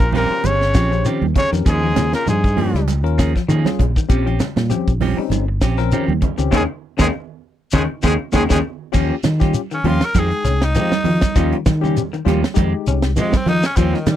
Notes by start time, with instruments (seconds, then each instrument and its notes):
Already playing: trumpet A#4
0.00 fingered electric bass A#1, muted clean electric guitar stroke, kick, shekere
0.12 baritone saxophone A#2, clean electric guitar F3 C4 C#4 G4, trombone A#3, trumpet A#4, snare, open hi-hat, high conga, low conga
0.30 tine electric piano C#4 G4 C5, muted clean electric guitar stroke
0.43 fingered electric bass G1, baritone saxophone C#3, trombone C#4, closed hi-hat, high conga, shekere
0.47 trumpet C#5
0.61 muted clean electric guitar stroke, snare
0.74 fingered electric bass A#1, clean electric guitar F3 C4 C#4 G4, kick, snare, closed hi-hat, shekere
0.91 clean electric guitar F3, tine electric piano C#4 G4 C5, muted clean electric guitar stroke, closed hi-hat, shekere
1.05 clean electric guitar D#3 F3 C4 C#4 G4, closed hi-hat, shekere
1.22 fingered electric bass D#2, high conga
1.35 clean electric guitar C#3, baritone saxophone C#3, trombone C#4, trumpet C#5, muted clean electric guitar stroke, kick, closed hi-hat, low conga, shekere
1.52 fingered electric bass F2, clean electric guitar D#3, tine electric piano C#4 G4 A#4, muted clean electric guitar stroke, snare, closed hi-hat, shekere
1.65 fingered electric bass D#2, baritone saxophone G#2, clean electric guitar F3 C#4 G#4, trombone G#3, trumpet G#4, muted clean electric guitar stroke, kick, snare, closed hi-hat, shekere
1.82 clean electric guitar F3 A#3 G#4
1.96 fingered electric bass D#2, clean electric guitar C#3, tine electric piano C#4 F4 G#4, muted clean electric guitar stroke, snare, closed hi-hat, high conga, shekere
2.13 baritone saxophone A#2, trombone A#3, trumpet A#4, snare, closed hi-hat, shekere
2.26 fingered electric bass G2, baritone saxophone G#2, clean electric guitar F3, trombone G#3, trumpet G#4, muted clean electric guitar stroke, closed hi-hat, low conga, shekere
2.44 muted clean electric guitar stroke, kick, closed hi-hat, shekere
2.57 clean electric guitar F3 A#3 G#4, tine electric piano C#4 F4 G#4, open hi-hat, high conga, low conga
2.74 fingered electric bass C#2, clean electric guitar G3, muted clean electric guitar stroke, snare, closed hi-hat
2.88 closed hi-hat, high conga, shekere
3.04 fingered electric bass D#2, tine electric piano C#4 F4 A#4, muted clean electric guitar stroke, closed hi-hat
3.18 clean electric guitar F3 A#3 C#4 G#4, kick, snare, closed hi-hat, shekere
3.35 clean electric guitar F3, muted clean electric guitar stroke, kick, snare, closed hi-hat, shekere
3.48 fingered electric bass D#3, clean electric guitar D#3 F3 A#3 C#4 G#4, closed hi-hat, low conga, shekere
3.65 tine electric piano C#4 F4 G#4, snare, high conga
3.79 fingered electric bass A#1, clean electric guitar C#3, muted clean electric guitar stroke, kick, closed hi-hat, low conga, shekere
3.96 clean electric guitar D#3, muted clean electric guitar stroke, kick, shekere
4.09 fingered electric bass A#1, clean electric guitar F3 C4 C#4 G4, tine electric piano C4 C#4 G4, kick, closed hi-hat, shekere
4.26 clean electric guitar F3 C4 C#4 G4, closed hi-hat
4.40 clean electric guitar C#3, muted clean electric guitar stroke, snare, closed hi-hat, high conga, shekere
4.56 fingered electric bass A#2, snare, high conga, shekere
4.70 clean electric guitar F3, tine electric piano C4 C#4 G4, muted clean electric guitar stroke, closed hi-hat, low conga, shekere
4.88 fingered electric bass A#1, muted clean electric guitar stroke, kick, closed hi-hat, shekere
5.01 clean electric guitar F3 C4 C#4 G4, snare, open hi-hat, high conga, low conga
5.17 clean electric guitar G3, tine electric piano C4 C#4 D#4, muted fingered electric bass stroke, muted clean electric guitar stroke
5.30 fingered electric bass G1, closed hi-hat, high conga, shekere
5.48 muted clean electric guitar stroke
5.61 fingered electric bass A#1, clean electric guitar F3 C4 C#4 G4, kick, snare, closed hi-hat, shekere
5.78 clean electric guitar F3, tine electric piano C4 C#4 A#4, muted clean electric guitar stroke, snare, closed hi-hat, shekere
5.92 clean electric guitar D#3 F3 C4 C#4 G4, closed hi-hat, low conga, shekere
6.08 fingered electric bass D#2, high conga
6.21 clean electric guitar C#3, muted clean electric guitar stroke, kick, closed hi-hat, low conga, shekere
6.38 fingered electric bass C#2, clean electric guitar D#3, tine electric piano C4 C#4 G4, muted clean electric guitar stroke, closed hi-hat, shekere
6.51 fingered electric bass D#2, baritone saxophone G#2, clean electric guitar C#3 D#3 G#3 A#3 C#4 D#4, trombone G#3, tine electric piano C#4 D#4 G#4, kick, snare, low conga, shekere
6.56 trumpet G#4
6.98 fingered electric bass D#2, baritone saxophone G#2, clean electric guitar C#3 D#3 G#3 A#3 C#4 D#4, trombone G#3, tine electric piano C#4 D#4 G#4, trumpet G#4, kick, snare, low conga, shekere
7.72 fingered electric bass D#2, baritone saxophone G#2, clean electric guitar C#3 D#3 G#3 A#3 C#4 D#4, trombone G#3, tine electric piano C#4 D#4 G#4, trumpet G#4, kick, snare, low conga, shekere
8.02 fingered electric bass D#2, baritone saxophone G#2, clean electric guitar C#3 D#3 G#3 A#3 C#4 D#4, trombone G#3, tine electric piano C#4 D#4 G#4, trumpet G#4, kick, snare, low conga, shekere
8.32 fingered electric bass D#2, baritone saxophone G#2, clean electric guitar C#3 D#3 G#3 A#3 C#4 D#4, trombone G#3, tine electric piano C#4 D#4 G#4, trumpet G#4, kick, snare, low conga, shekere
8.49 fingered electric bass D#2, baritone saxophone G#2, clean electric guitar C#3 D#3 G#3 A#3 C#4 D#4, trombone G#3, tine electric piano C#4 D#4 G#4, trumpet G#4, kick, snare, low conga, shekere
8.92 fingered electric bass D#2, clean electric guitar F3 A#3 C#4 G4, tine electric piano C#4 F4 G4, kick, crash, shekere
9.10 muted clean electric guitar stroke
9.24 fingered electric bass D#3, muted clean electric guitar stroke, snare, closed hi-hat, high conga, shekere
9.39 clean electric guitar A#3 C#4 G4, tine electric piano C#4 F4 G4, kick, snare, closed hi-hat, high conga, shekere
9.54 muted clean electric guitar stroke, closed hi-hat, shekere
9.71 clean electric guitar D#3, tenor saxophone C#4, muted clean electric guitar stroke, closed hi-hat, shekere
9.84 fingered electric bass D#2, clean electric guitar F3 A#3 C#4 G4, tine electric piano C#4 F4 G4, tenor saxophone F4, open hi-hat, high conga, low conga
10.01 tenor saxophone A#4, muted clean electric guitar stroke, snare, closed hi-hat
10.14 fingered electric bass F2, clean electric guitar D#3 G#3 C4 G4, tine electric piano G#3 D#4 G5, muted clean electric guitar stroke, kick, closed hi-hat, high conga, shekere
10.19 tenor saxophone G#4
10.31 muted clean electric guitar stroke, closed hi-hat
10.44 fingered electric bass C2, clean electric guitar C#4, snare, closed hi-hat, shekere
10.62 tenor saxophone D#4, muted clean electric guitar stroke, snare, closed hi-hat, shekere
10.74 fingered electric bass F3, clean electric guitar F3 G#3 C4 G4, snare, closed hi-hat, low conga, shekere
10.92 muted fingered electric bass stroke, snare, high conga
11.04 clean electric guitar D#3, fingered electric bass F3, open hi-hat, low conga, shekere
11.21 muted clean electric guitar stroke, kick, snare, closed hi-hat, high conga, shekere
11.35 fingered electric bass D#2, clean electric guitar F3 A#3 C#4 G4, tine electric piano G3 C#4 F4, muted clean electric guitar stroke, kick, closed hi-hat, shekere
11.52 clean electric guitar D#3, closed hi-hat
11.66 fingered electric bass D#3, muted clean electric guitar stroke, kick, snare, closed hi-hat, high conga, shekere
11.81 clean electric guitar C#3 A#3 C#4 G4, tine electric piano G3 C#4 G4, high conga, shekere
11.96 muted clean electric guitar stroke, closed hi-hat, low conga, shekere
12.13 clean electric guitar D#3, muted clean electric guitar stroke, closed hi-hat, shekere
12.25 fingered electric bass D#2, clean electric guitar F3 G3 A#3 C#4 G4, tine electric piano G3 C#4 F4, snare, closed hi-hat, high conga, low conga
12.44 muted clean electric guitar stroke, snare, closed hi-hat
12.54 fingered electric bass F2, clean electric guitar D#3, tine electric piano G#3 D#4 G4, muted clean electric guitar stroke, kick, closed hi-hat, high conga, shekere
12.58 clean electric guitar G#3 C4 G4
12.74 muted clean electric guitar stroke
12.86 fingered electric bass C2, clean electric guitar C#4, closed hi-hat, shekere
13.02 muted clean electric guitar stroke, snare, shekere
13.16 fingered electric bass F3, clean electric guitar F3 G#3 C4 G4, tenor saxophone G#3, closed hi-hat, low conga, shekere
13.32 muted fingered electric bass stroke, kick, snare, high conga
13.36 tenor saxophone C4
13.46 clean electric guitar D#3, fingered electric bass F3, tenor saxophone D#4, closed hi-hat, low conga, shekere
13.63 tenor saxophone C#4, muted clean electric guitar stroke, snare, shekere
13.76 fingered electric bass D#2, clean electric guitar F3 A#3 C#4 G4, tine electric piano G3 C#4 F4, tenor saxophone C4, kick, closed hi-hat, shekere
13.94 clean electric guitar D#3, tenor saxophone D#3, snare
14.07 fingered electric bass D#3, tenor saxophone G3, muted clean electric guitar stroke, snare, closed hi-hat, high conga, shekere